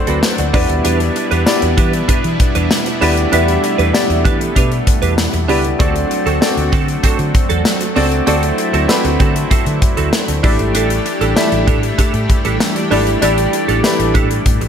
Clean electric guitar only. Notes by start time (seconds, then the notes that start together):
0.07 C4 F#4 A4
0.23 muted clean electric guitar stroke
0.39 muted clean electric guitar stroke
0.54 D4 G4 B4
0.69 muted clean electric guitar stroke
0.84 D4 G4 B4
1.00 muted clean electric guitar stroke
1.16 muted clean electric guitar stroke
1.31 D4 G4 B4
1.62 muted clean electric guitar stroke
1.77 D4 G4 B4
1.93 muted clean electric guitar stroke
2.08 D4 G4 B4
2.24 muted clean electric guitar stroke
2.40 muted clean electric guitar stroke
2.55 D4 G4 B4
2.71 muted clean electric guitar stroke
2.86 muted clean electric guitar stroke
3.01 D4 G4 B4
3.17 muted clean electric guitar stroke
3.32 D4 G4 B4
3.47 muted clean electric guitar stroke
3.63 muted clean electric guitar stroke
3.78 D4 G4 B4
4.09 muted clean electric guitar stroke
4.25 D4 G4 B4
4.40 muted clean electric guitar stroke
4.56 D4 G4 B4
4.71 muted clean electric guitar stroke
4.87 muted clean electric guitar stroke
5.02 D4 G4 B4
5.17 muted clean electric guitar stroke
5.33 muted clean electric guitar stroke
5.48 D4 G4 B4
5.64 muted clean electric guitar stroke
5.79 C4 F#4 A4
5.95 muted clean electric guitar stroke
6.10 muted clean electric guitar stroke
6.26 C4 F#4 A4
6.57 muted clean electric guitar stroke
6.72 C4 F#4 A4
6.88 muted clean electric guitar stroke
7.03 C4 F#4 A4
7.19 muted clean electric guitar stroke
7.34 muted clean electric guitar stroke
7.49 C4 F#4 A4
7.65 muted clean electric guitar stroke
7.81 muted clean electric guitar stroke
7.96 C4 F#4 A4
8.11 muted clean electric guitar stroke
8.27 C4 F#4 A4
8.43 muted clean electric guitar stroke
8.58 muted clean electric guitar stroke
8.73 C4 F#4 A4
9.04 muted clean electric guitar stroke
9.20 C4 F#4 A4
9.36 muted clean electric guitar stroke
9.50 C4 F#4 A4
9.66 muted clean electric guitar stroke
9.82 muted clean electric guitar stroke
9.97 C4 F#4 A4
10.13 muted clean electric guitar stroke
10.28 muted clean electric guitar stroke
10.43 D4 G4 A4
10.59 muted clean electric guitar stroke
10.74 D4 G4 A4
10.90 muted clean electric guitar stroke
11.06 muted clean electric guitar stroke
11.21 D4 G4 A4
11.52 muted clean electric guitar stroke
11.67 D4 G4 A4
11.83 muted clean electric guitar stroke
11.98 D4 G4 A4
12.14 muted clean electric guitar stroke
12.30 muted clean electric guitar stroke
12.45 D4 G4 A4
12.61 muted clean electric guitar stroke
12.76 muted clean electric guitar stroke
12.91 D4 G4 A4
13.07 muted clean electric guitar stroke
13.22 D4 G4 A4
13.38 muted clean electric guitar stroke
13.53 muted clean electric guitar stroke
13.68 D4 G4 A4
13.99 muted clean electric guitar stroke
14.14 D4 G4 A4
14.30 muted clean electric guitar stroke
14.61 muted clean electric guitar stroke